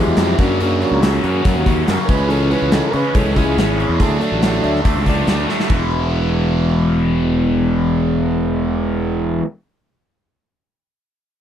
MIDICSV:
0, 0, Header, 1, 6, 480
1, 0, Start_track
1, 0, Tempo, 425532
1, 677, Time_signature, 4, 2, 24, 8
1, 12869, End_track
2, 0, Start_track
2, 0, Title_t, "Tonewheel organ"
2, 0, Program_c, 0, 16
2, 0, Note_on_c, 0, 54, 57
2, 0, Note_on_c, 0, 56, 52
2, 0, Note_on_c, 0, 64, 62
2, 0, Note_on_c, 0, 67, 72
2, 184, Note_off_c, 0, 64, 0
2, 195, Note_off_c, 0, 67, 0
2, 208, Note_on_c, 0, 67, 75
2, 215, Note_on_c, 0, 64, 70
2, 386, Note_off_c, 0, 56, 0
2, 388, Note_off_c, 0, 54, 0
2, 430, Note_off_c, 0, 64, 0
2, 436, Note_off_c, 0, 67, 0
2, 438, Note_on_c, 0, 54, 53
2, 443, Note_on_c, 0, 58, 47
2, 447, Note_on_c, 0, 61, 63
2, 459, Note_on_c, 0, 62, 71
2, 460, Note_on_c, 0, 66, 75
2, 672, Note_off_c, 0, 62, 0
2, 681, Note_off_c, 0, 66, 0
2, 703, Note_on_c, 0, 62, 70
2, 710, Note_on_c, 0, 66, 83
2, 914, Note_off_c, 0, 62, 0
2, 926, Note_off_c, 0, 66, 0
2, 957, Note_on_c, 0, 62, 71
2, 963, Note_on_c, 0, 66, 79
2, 1120, Note_off_c, 0, 54, 0
2, 1122, Note_off_c, 0, 58, 0
2, 1125, Note_off_c, 0, 61, 0
2, 1136, Note_on_c, 0, 65, 62
2, 1161, Note_off_c, 0, 62, 0
2, 1163, Note_off_c, 0, 65, 0
2, 1171, Note_off_c, 0, 66, 0
2, 1185, Note_on_c, 0, 66, 82
2, 2100, Note_off_c, 0, 66, 0
2, 2316, Note_on_c, 0, 70, 78
2, 2346, Note_off_c, 0, 70, 0
2, 2366, Note_on_c, 0, 71, 104
2, 2563, Note_on_c, 0, 52, 57
2, 2574, Note_on_c, 0, 56, 49
2, 2578, Note_on_c, 0, 61, 60
2, 2592, Note_off_c, 0, 71, 0
2, 2596, Note_on_c, 0, 69, 87
2, 2827, Note_off_c, 0, 69, 0
2, 2829, Note_on_c, 0, 71, 79
2, 3063, Note_off_c, 0, 71, 0
2, 3079, Note_on_c, 0, 69, 77
2, 3260, Note_off_c, 0, 52, 0
2, 3266, Note_off_c, 0, 56, 0
2, 3268, Note_off_c, 0, 61, 0
2, 3279, Note_on_c, 0, 70, 66
2, 3308, Note_off_c, 0, 69, 0
2, 3308, Note_off_c, 0, 70, 0
2, 3344, Note_on_c, 0, 71, 94
2, 3548, Note_on_c, 0, 52, 47
2, 3557, Note_on_c, 0, 56, 39
2, 3560, Note_on_c, 0, 61, 47
2, 3561, Note_off_c, 0, 71, 0
2, 3579, Note_on_c, 0, 69, 81
2, 3765, Note_off_c, 0, 52, 0
2, 3770, Note_off_c, 0, 56, 0
2, 3772, Note_off_c, 0, 61, 0
2, 3798, Note_off_c, 0, 69, 0
2, 3801, Note_on_c, 0, 64, 76
2, 3809, Note_on_c, 0, 68, 79
2, 4711, Note_off_c, 0, 64, 0
2, 4728, Note_on_c, 0, 54, 51
2, 4731, Note_off_c, 0, 68, 0
2, 4735, Note_on_c, 0, 57, 48
2, 4736, Note_on_c, 0, 62, 58
2, 5203, Note_on_c, 0, 75, 64
2, 5232, Note_off_c, 0, 75, 0
2, 5246, Note_on_c, 0, 76, 91
2, 5423, Note_off_c, 0, 54, 0
2, 5427, Note_off_c, 0, 57, 0
2, 5427, Note_off_c, 0, 62, 0
2, 5704, Note_off_c, 0, 76, 0
2, 5742, Note_on_c, 0, 74, 69
2, 5960, Note_off_c, 0, 74, 0
2, 5980, Note_on_c, 0, 74, 70
2, 6199, Note_off_c, 0, 74, 0
2, 6221, Note_on_c, 0, 76, 81
2, 6439, Note_off_c, 0, 76, 0
2, 12869, End_track
3, 0, Start_track
3, 0, Title_t, "Overdriven electric guitar"
3, 0, Program_c, 1, 29
3, 0, Note_on_c, 1, 52, 76
3, 0, Note_on_c, 1, 56, 81
3, 0, Note_on_c, 1, 59, 76
3, 0, Note_on_c, 1, 64, 86
3, 187, Note_off_c, 1, 52, 0
3, 195, Note_off_c, 1, 56, 0
3, 200, Note_on_c, 1, 52, 81
3, 202, Note_off_c, 1, 59, 0
3, 209, Note_off_c, 1, 64, 0
3, 209, Note_on_c, 1, 56, 83
3, 216, Note_on_c, 1, 59, 91
3, 222, Note_on_c, 1, 64, 91
3, 424, Note_off_c, 1, 52, 0
3, 429, Note_off_c, 1, 56, 0
3, 432, Note_off_c, 1, 59, 0
3, 435, Note_off_c, 1, 64, 0
3, 437, Note_on_c, 1, 42, 83
3, 446, Note_on_c, 1, 49, 87
3, 448, Note_on_c, 1, 54, 87
3, 457, Note_on_c, 1, 58, 92
3, 459, Note_on_c, 1, 61, 101
3, 667, Note_off_c, 1, 42, 0
3, 671, Note_off_c, 1, 49, 0
3, 680, Note_on_c, 1, 42, 96
3, 683, Note_off_c, 1, 54, 0
3, 683, Note_off_c, 1, 58, 0
3, 684, Note_on_c, 1, 49, 94
3, 696, Note_on_c, 1, 54, 99
3, 697, Note_on_c, 1, 58, 103
3, 701, Note_off_c, 1, 61, 0
3, 706, Note_on_c, 1, 61, 93
3, 906, Note_off_c, 1, 42, 0
3, 916, Note_off_c, 1, 49, 0
3, 916, Note_off_c, 1, 54, 0
3, 920, Note_on_c, 1, 42, 87
3, 922, Note_off_c, 1, 58, 0
3, 929, Note_on_c, 1, 54, 80
3, 930, Note_on_c, 1, 49, 85
3, 935, Note_on_c, 1, 58, 82
3, 937, Note_off_c, 1, 61, 0
3, 941, Note_on_c, 1, 61, 82
3, 1145, Note_off_c, 1, 42, 0
3, 1159, Note_off_c, 1, 49, 0
3, 1159, Note_on_c, 1, 42, 80
3, 1160, Note_off_c, 1, 54, 0
3, 1163, Note_off_c, 1, 58, 0
3, 1172, Note_on_c, 1, 49, 76
3, 1173, Note_on_c, 1, 54, 80
3, 1177, Note_on_c, 1, 58, 80
3, 1180, Note_off_c, 1, 61, 0
3, 1184, Note_on_c, 1, 61, 83
3, 1377, Note_off_c, 1, 42, 0
3, 1390, Note_on_c, 1, 42, 79
3, 1391, Note_off_c, 1, 49, 0
3, 1395, Note_off_c, 1, 54, 0
3, 1399, Note_off_c, 1, 58, 0
3, 1404, Note_on_c, 1, 49, 70
3, 1408, Note_on_c, 1, 54, 83
3, 1412, Note_off_c, 1, 61, 0
3, 1412, Note_on_c, 1, 58, 84
3, 1417, Note_on_c, 1, 61, 84
3, 1618, Note_off_c, 1, 42, 0
3, 1624, Note_off_c, 1, 49, 0
3, 1626, Note_off_c, 1, 54, 0
3, 1631, Note_on_c, 1, 42, 100
3, 1638, Note_on_c, 1, 49, 99
3, 1640, Note_off_c, 1, 58, 0
3, 1640, Note_off_c, 1, 61, 0
3, 1640, Note_on_c, 1, 54, 98
3, 1653, Note_on_c, 1, 58, 106
3, 1654, Note_on_c, 1, 61, 108
3, 1855, Note_off_c, 1, 42, 0
3, 1863, Note_off_c, 1, 49, 0
3, 1867, Note_off_c, 1, 54, 0
3, 1868, Note_on_c, 1, 42, 73
3, 1871, Note_off_c, 1, 58, 0
3, 1876, Note_on_c, 1, 49, 77
3, 1877, Note_off_c, 1, 61, 0
3, 1880, Note_on_c, 1, 54, 77
3, 1885, Note_on_c, 1, 58, 81
3, 1890, Note_on_c, 1, 61, 82
3, 2110, Note_off_c, 1, 42, 0
3, 2113, Note_off_c, 1, 49, 0
3, 2115, Note_off_c, 1, 54, 0
3, 2124, Note_on_c, 1, 42, 78
3, 2125, Note_off_c, 1, 58, 0
3, 2127, Note_on_c, 1, 49, 82
3, 2128, Note_off_c, 1, 61, 0
3, 2128, Note_on_c, 1, 54, 87
3, 2139, Note_on_c, 1, 58, 83
3, 2142, Note_on_c, 1, 61, 82
3, 2328, Note_off_c, 1, 49, 0
3, 2342, Note_on_c, 1, 49, 89
3, 2344, Note_off_c, 1, 42, 0
3, 2346, Note_off_c, 1, 54, 0
3, 2346, Note_off_c, 1, 61, 0
3, 2351, Note_off_c, 1, 58, 0
3, 2351, Note_on_c, 1, 52, 88
3, 2356, Note_on_c, 1, 56, 89
3, 2360, Note_on_c, 1, 61, 85
3, 2578, Note_off_c, 1, 49, 0
3, 2589, Note_off_c, 1, 52, 0
3, 2590, Note_off_c, 1, 56, 0
3, 2592, Note_on_c, 1, 49, 88
3, 2594, Note_off_c, 1, 61, 0
3, 2603, Note_on_c, 1, 52, 96
3, 2604, Note_on_c, 1, 56, 94
3, 2608, Note_on_c, 1, 61, 97
3, 2814, Note_off_c, 1, 49, 0
3, 2822, Note_off_c, 1, 52, 0
3, 2828, Note_on_c, 1, 49, 80
3, 2830, Note_off_c, 1, 56, 0
3, 2833, Note_off_c, 1, 61, 0
3, 2836, Note_on_c, 1, 52, 79
3, 2844, Note_on_c, 1, 56, 85
3, 2846, Note_on_c, 1, 61, 87
3, 3057, Note_off_c, 1, 49, 0
3, 3063, Note_off_c, 1, 52, 0
3, 3068, Note_off_c, 1, 56, 0
3, 3070, Note_on_c, 1, 49, 81
3, 3072, Note_off_c, 1, 61, 0
3, 3076, Note_on_c, 1, 52, 76
3, 3081, Note_on_c, 1, 56, 80
3, 3085, Note_on_c, 1, 61, 86
3, 3294, Note_off_c, 1, 49, 0
3, 3300, Note_off_c, 1, 52, 0
3, 3306, Note_off_c, 1, 56, 0
3, 3307, Note_on_c, 1, 49, 78
3, 3309, Note_off_c, 1, 61, 0
3, 3314, Note_on_c, 1, 52, 77
3, 3319, Note_on_c, 1, 56, 87
3, 3323, Note_on_c, 1, 61, 86
3, 3536, Note_off_c, 1, 49, 0
3, 3544, Note_off_c, 1, 52, 0
3, 3548, Note_off_c, 1, 56, 0
3, 3550, Note_on_c, 1, 49, 88
3, 3552, Note_off_c, 1, 61, 0
3, 3557, Note_on_c, 1, 52, 91
3, 3561, Note_on_c, 1, 56, 105
3, 3565, Note_on_c, 1, 61, 116
3, 3767, Note_off_c, 1, 49, 0
3, 3770, Note_off_c, 1, 52, 0
3, 3781, Note_off_c, 1, 56, 0
3, 3781, Note_on_c, 1, 49, 76
3, 3783, Note_on_c, 1, 52, 84
3, 3785, Note_off_c, 1, 61, 0
3, 3795, Note_on_c, 1, 56, 73
3, 3798, Note_on_c, 1, 61, 85
3, 4012, Note_off_c, 1, 49, 0
3, 4018, Note_off_c, 1, 52, 0
3, 4025, Note_off_c, 1, 56, 0
3, 4026, Note_on_c, 1, 49, 79
3, 4030, Note_off_c, 1, 61, 0
3, 4031, Note_on_c, 1, 52, 76
3, 4038, Note_on_c, 1, 56, 82
3, 4044, Note_on_c, 1, 61, 85
3, 4254, Note_off_c, 1, 49, 0
3, 4258, Note_off_c, 1, 52, 0
3, 4268, Note_on_c, 1, 49, 67
3, 4270, Note_off_c, 1, 61, 0
3, 4271, Note_off_c, 1, 56, 0
3, 4271, Note_on_c, 1, 52, 72
3, 4284, Note_on_c, 1, 56, 75
3, 4284, Note_on_c, 1, 61, 86
3, 4495, Note_off_c, 1, 49, 0
3, 4497, Note_off_c, 1, 52, 0
3, 4503, Note_off_c, 1, 56, 0
3, 4503, Note_off_c, 1, 61, 0
3, 4511, Note_on_c, 1, 50, 85
3, 4517, Note_on_c, 1, 54, 88
3, 4528, Note_on_c, 1, 57, 92
3, 4530, Note_on_c, 1, 62, 87
3, 4732, Note_off_c, 1, 50, 0
3, 4741, Note_off_c, 1, 54, 0
3, 4745, Note_on_c, 1, 50, 79
3, 4748, Note_off_c, 1, 57, 0
3, 4755, Note_on_c, 1, 54, 73
3, 4757, Note_off_c, 1, 62, 0
3, 4761, Note_on_c, 1, 57, 76
3, 4770, Note_on_c, 1, 62, 95
3, 4966, Note_off_c, 1, 50, 0
3, 4978, Note_off_c, 1, 54, 0
3, 4979, Note_off_c, 1, 57, 0
3, 4979, Note_on_c, 1, 50, 75
3, 4985, Note_off_c, 1, 62, 0
3, 4992, Note_on_c, 1, 54, 78
3, 4993, Note_on_c, 1, 57, 88
3, 4998, Note_on_c, 1, 62, 78
3, 5207, Note_off_c, 1, 50, 0
3, 5207, Note_off_c, 1, 54, 0
3, 5220, Note_off_c, 1, 57, 0
3, 5220, Note_off_c, 1, 62, 0
3, 5220, Note_on_c, 1, 50, 68
3, 5221, Note_on_c, 1, 54, 70
3, 5233, Note_on_c, 1, 62, 81
3, 5234, Note_on_c, 1, 57, 73
3, 5446, Note_off_c, 1, 50, 0
3, 5456, Note_off_c, 1, 54, 0
3, 5459, Note_off_c, 1, 57, 0
3, 5459, Note_on_c, 1, 50, 93
3, 5469, Note_off_c, 1, 62, 0
3, 5469, Note_on_c, 1, 54, 97
3, 5472, Note_on_c, 1, 57, 93
3, 5483, Note_on_c, 1, 62, 90
3, 5689, Note_off_c, 1, 50, 0
3, 5695, Note_off_c, 1, 54, 0
3, 5703, Note_on_c, 1, 50, 75
3, 5704, Note_off_c, 1, 57, 0
3, 5708, Note_on_c, 1, 54, 78
3, 5712, Note_off_c, 1, 62, 0
3, 5718, Note_on_c, 1, 57, 76
3, 5725, Note_on_c, 1, 62, 84
3, 5936, Note_off_c, 1, 50, 0
3, 5942, Note_off_c, 1, 54, 0
3, 5945, Note_off_c, 1, 57, 0
3, 5949, Note_on_c, 1, 50, 72
3, 5952, Note_off_c, 1, 62, 0
3, 5955, Note_on_c, 1, 54, 80
3, 5959, Note_on_c, 1, 57, 85
3, 5966, Note_on_c, 1, 62, 83
3, 6168, Note_off_c, 1, 50, 0
3, 6176, Note_off_c, 1, 54, 0
3, 6182, Note_on_c, 1, 50, 69
3, 6184, Note_off_c, 1, 57, 0
3, 6186, Note_off_c, 1, 62, 0
3, 6190, Note_on_c, 1, 54, 69
3, 6197, Note_on_c, 1, 57, 72
3, 6200, Note_on_c, 1, 62, 80
3, 6412, Note_off_c, 1, 50, 0
3, 6416, Note_off_c, 1, 54, 0
3, 6417, Note_on_c, 1, 52, 82
3, 6420, Note_off_c, 1, 57, 0
3, 6421, Note_off_c, 1, 62, 0
3, 6438, Note_on_c, 1, 56, 79
3, 6447, Note_on_c, 1, 59, 97
3, 6461, Note_on_c, 1, 64, 92
3, 10636, Note_off_c, 1, 52, 0
3, 10657, Note_off_c, 1, 56, 0
3, 10665, Note_off_c, 1, 59, 0
3, 10679, Note_off_c, 1, 64, 0
3, 12869, End_track
4, 0, Start_track
4, 0, Title_t, "Distorted electric guitar"
4, 0, Program_c, 2, 30
4, 0, Note_on_c, 2, 40, 68
4, 0, Note_on_c, 2, 47, 81
4, 192, Note_off_c, 2, 40, 0
4, 201, Note_off_c, 2, 47, 0
4, 205, Note_on_c, 2, 40, 82
4, 215, Note_on_c, 2, 47, 77
4, 427, Note_off_c, 2, 40, 0
4, 432, Note_off_c, 2, 47, 0
4, 6415, Note_on_c, 2, 40, 82
4, 6438, Note_on_c, 2, 47, 94
4, 10634, Note_off_c, 2, 40, 0
4, 10657, Note_off_c, 2, 47, 0
4, 12869, End_track
5, 0, Start_track
5, 0, Title_t, "Fingered electric bass"
5, 0, Program_c, 3, 33
5, 81, Note_on_c, 3, 40, 93
5, 180, Note_off_c, 3, 40, 0
5, 194, Note_on_c, 3, 41, 88
5, 396, Note_off_c, 3, 41, 0
5, 438, Note_on_c, 3, 42, 91
5, 938, Note_off_c, 3, 42, 0
5, 1030, Note_on_c, 3, 37, 87
5, 1333, Note_off_c, 3, 37, 0
5, 1399, Note_on_c, 3, 42, 82
5, 1598, Note_off_c, 3, 42, 0
5, 1638, Note_on_c, 3, 42, 84
5, 1737, Note_off_c, 3, 42, 0
5, 1758, Note_on_c, 3, 39, 81
5, 2057, Note_off_c, 3, 39, 0
5, 2122, Note_on_c, 3, 42, 82
5, 2219, Note_off_c, 3, 42, 0
5, 2357, Note_on_c, 3, 37, 99
5, 2857, Note_off_c, 3, 37, 0
5, 2956, Note_on_c, 3, 37, 81
5, 3155, Note_off_c, 3, 37, 0
5, 3316, Note_on_c, 3, 49, 82
5, 3414, Note_off_c, 3, 49, 0
5, 3554, Note_on_c, 3, 37, 97
5, 3653, Note_off_c, 3, 37, 0
5, 3673, Note_on_c, 3, 37, 90
5, 3873, Note_off_c, 3, 37, 0
5, 3915, Note_on_c, 3, 37, 88
5, 4014, Note_off_c, 3, 37, 0
5, 4032, Note_on_c, 3, 32, 90
5, 4333, Note_off_c, 3, 32, 0
5, 4388, Note_on_c, 3, 40, 88
5, 4490, Note_off_c, 3, 40, 0
5, 4505, Note_on_c, 3, 38, 90
5, 4708, Note_off_c, 3, 38, 0
5, 4870, Note_on_c, 3, 33, 74
5, 5172, Note_off_c, 3, 33, 0
5, 5236, Note_on_c, 3, 38, 75
5, 5435, Note_off_c, 3, 38, 0
5, 5469, Note_on_c, 3, 38, 85
5, 5570, Note_off_c, 3, 38, 0
5, 5589, Note_on_c, 3, 37, 70
5, 5891, Note_off_c, 3, 37, 0
5, 5945, Note_on_c, 3, 38, 81
5, 6148, Note_off_c, 3, 38, 0
5, 6429, Note_on_c, 3, 28, 88
5, 10603, Note_off_c, 3, 28, 0
5, 12869, End_track
6, 0, Start_track
6, 0, Title_t, "Drums"
6, 187, Note_on_c, 9, 46, 63
6, 192, Note_on_c, 9, 38, 111
6, 299, Note_off_c, 9, 46, 0
6, 305, Note_off_c, 9, 38, 0
6, 437, Note_on_c, 9, 36, 106
6, 437, Note_on_c, 9, 46, 53
6, 550, Note_off_c, 9, 36, 0
6, 550, Note_off_c, 9, 46, 0
6, 682, Note_on_c, 9, 46, 66
6, 795, Note_off_c, 9, 46, 0
6, 921, Note_on_c, 9, 46, 51
6, 1034, Note_off_c, 9, 46, 0
6, 1157, Note_on_c, 9, 46, 66
6, 1163, Note_on_c, 9, 38, 102
6, 1270, Note_off_c, 9, 46, 0
6, 1276, Note_off_c, 9, 38, 0
6, 1398, Note_on_c, 9, 46, 56
6, 1511, Note_off_c, 9, 46, 0
6, 1633, Note_on_c, 9, 46, 70
6, 1638, Note_on_c, 9, 36, 107
6, 1746, Note_off_c, 9, 46, 0
6, 1750, Note_off_c, 9, 36, 0
6, 1874, Note_on_c, 9, 46, 51
6, 1875, Note_on_c, 9, 36, 84
6, 1986, Note_off_c, 9, 46, 0
6, 1988, Note_off_c, 9, 36, 0
6, 2117, Note_on_c, 9, 46, 66
6, 2123, Note_on_c, 9, 38, 104
6, 2230, Note_off_c, 9, 46, 0
6, 2236, Note_off_c, 9, 38, 0
6, 2355, Note_on_c, 9, 36, 108
6, 2356, Note_on_c, 9, 46, 51
6, 2468, Note_off_c, 9, 36, 0
6, 2469, Note_off_c, 9, 46, 0
6, 2599, Note_on_c, 9, 46, 65
6, 2712, Note_off_c, 9, 46, 0
6, 2835, Note_on_c, 9, 46, 50
6, 2948, Note_off_c, 9, 46, 0
6, 3065, Note_on_c, 9, 46, 64
6, 3070, Note_on_c, 9, 38, 107
6, 3177, Note_off_c, 9, 46, 0
6, 3183, Note_off_c, 9, 38, 0
6, 3310, Note_on_c, 9, 46, 50
6, 3423, Note_off_c, 9, 46, 0
6, 3551, Note_on_c, 9, 46, 61
6, 3552, Note_on_c, 9, 36, 104
6, 3664, Note_off_c, 9, 46, 0
6, 3665, Note_off_c, 9, 36, 0
6, 3791, Note_on_c, 9, 46, 44
6, 3794, Note_on_c, 9, 36, 83
6, 3904, Note_off_c, 9, 46, 0
6, 3907, Note_off_c, 9, 36, 0
6, 4040, Note_on_c, 9, 46, 60
6, 4046, Note_on_c, 9, 38, 103
6, 4153, Note_off_c, 9, 46, 0
6, 4158, Note_off_c, 9, 38, 0
6, 4284, Note_on_c, 9, 46, 46
6, 4397, Note_off_c, 9, 46, 0
6, 4510, Note_on_c, 9, 36, 96
6, 4510, Note_on_c, 9, 46, 60
6, 4623, Note_off_c, 9, 36, 0
6, 4623, Note_off_c, 9, 46, 0
6, 4750, Note_on_c, 9, 46, 49
6, 4863, Note_off_c, 9, 46, 0
6, 4989, Note_on_c, 9, 46, 63
6, 4995, Note_on_c, 9, 38, 103
6, 5102, Note_off_c, 9, 46, 0
6, 5107, Note_off_c, 9, 38, 0
6, 5231, Note_on_c, 9, 46, 50
6, 5344, Note_off_c, 9, 46, 0
6, 5363, Note_on_c, 9, 38, 30
6, 5471, Note_on_c, 9, 46, 63
6, 5472, Note_on_c, 9, 36, 101
6, 5476, Note_off_c, 9, 38, 0
6, 5583, Note_off_c, 9, 46, 0
6, 5585, Note_off_c, 9, 36, 0
6, 5708, Note_on_c, 9, 46, 49
6, 5711, Note_on_c, 9, 36, 76
6, 5821, Note_off_c, 9, 46, 0
6, 5823, Note_off_c, 9, 36, 0
6, 5948, Note_on_c, 9, 46, 68
6, 5954, Note_on_c, 9, 38, 100
6, 6061, Note_off_c, 9, 46, 0
6, 6067, Note_off_c, 9, 38, 0
6, 6195, Note_on_c, 9, 38, 58
6, 6308, Note_off_c, 9, 38, 0
6, 6317, Note_on_c, 9, 38, 71
6, 6427, Note_on_c, 9, 49, 77
6, 6428, Note_on_c, 9, 36, 94
6, 6429, Note_off_c, 9, 38, 0
6, 6539, Note_off_c, 9, 49, 0
6, 6541, Note_off_c, 9, 36, 0
6, 12869, End_track
0, 0, End_of_file